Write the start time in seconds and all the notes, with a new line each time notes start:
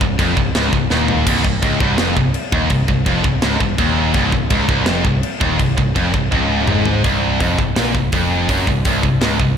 0.01 C1 C2, kick
0.19 F1 F2, kick, crash
0.36 C1 C2, kick
0.55 C#1 C#2, snare, crash
0.72 C1 C2, kick
0.90 D#1 D#2, snare
1.08 floor tom
1.27 C1 C2, kick, crash
1.45 C1 C2, kick
1.62 C#1 C#2, kick, crash
1.80 C1 C2, kick
1.98 F1 F2, snare, crash
2.16 C1 C2, kick
2.34 crash
2.52 D#1 D#2, kick
2.70 C1 C2, kick, crash
2.88 C1 C2, kick
3.06 F1 F2, kick, crash
3.24 C1 C2, kick
3.42 C#1 C#2, snare, crash
3.60 C1 C2, kick
3.78 D#1 D#2, kick, crash
4.14 C1 C2, kick, crash
4.32 C1 C2, kick
4.50 C#1 C#2, kick, crash
4.69 C1 C2, kick
4.86 F1 F2, snare, crash
5.05 C1 C2, kick
5.23 crash
5.41 D#1 D#2, kick
5.59 C1 C2, kick, crash
5.77 C1 C2, kick
5.95 F1 F2, kick, crash
6.14 C1 C2, kick
6.32 C#1 C#2, kick
6.67 G#1 G#2, mid tom
6.85 floor tom
7.04 C1 C2, kick, open hi-hat
7.40 F1 F2, kick, open hi-hat
7.58 C1 C2, kick
7.76 A#1 A#2, snare, open hi-hat
7.95 C1 C2, kick
8.12 F1 F2, kick, open hi-hat
8.49 F#1 F#2, kick, open hi-hat
8.67 C1 C2, kick
8.85 C1 C2, kick, open hi-hat
9.03 C1 C2, kick
9.21 C#1 C#2, snare, open hi-hat
9.39 C1 C2, kick